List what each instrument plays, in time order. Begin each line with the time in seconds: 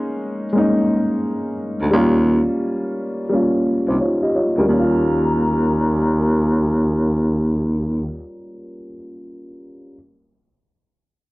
Already playing: upright piano G#3 A#3 C#4 D#4
0.53 upright piano G#3 A#3 C#4
0.58 upright piano D#4
1.81 baritone saxophone D2
1.91 baritone saxophone D#2, upright piano G3 A#3 C#4
1.96 upright piano F4
3.29 upright piano G3 A#3 C#4
3.34 upright piano F4
3.88 baritone saxophone C2, upright piano D#4 C5
4.00 upright piano F4 C#5
4.23 upright piano G4 D#5
4.35 upright piano F4 C#5
4.57 baritone saxophone D2, upright piano G3 C#4 A#4
4.66 baritone saxophone D#2, upright piano A#3, flute A#5
4.73 upright piano C#4
4.79 upright piano F4